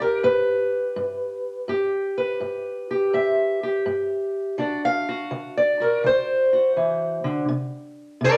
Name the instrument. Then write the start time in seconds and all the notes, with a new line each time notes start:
steel-string acoustic guitar
Already playing: G2 F5
0.00 G4 A#4
0.23 G2 B4
0.96 G2
1.68 G2 G4
2.18 B4
2.40 G2
2.91 G4
3.13 G2 E5
3.63 G4
3.86 G2
4.58 D3 D4 F#4 D5
4.85 F5
5.09 F#4
5.31 D3
5.57 D5
5.80 F#4 A#4
6.04 D3 C5
6.53 F#4
6.76 E3
7.24 D3
7.48 C3
8.21 C3 A#4
8.25 D5